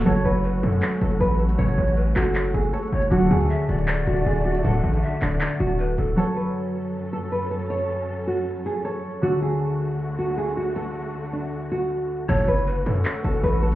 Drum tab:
CC |--------------------------------|--------------------------------|--------------------------------|--------------------------------|
HH |x-x---x-x---x-x-x-x-x-x-xxxxx-x-|x-x---x-x---o-x-x-x-x-x-xxxxx-x-|x-x---x-x---x-x-x-x-x-x-xxxxx-x-|x-x---x-x---o-x-x-x-x-x-x---x---|
CP |----------------x---------------|------------x---x---------------|----------------x---------------|------------x---x---------------|

CC |--------------------------------|--------------------------------|--------------------------------|--------------------------------|
HH |--------------------------------|--------------------------------|--------------------------------|--------------------------------|
CP |--------------------------------|--------------------------------|--------------------------------|--------------------------------|

CC |x-------------------------------|
HH |x-x---x-x---x-x-x-x-x-x-xxxxx---|
CP |----------------x---------------|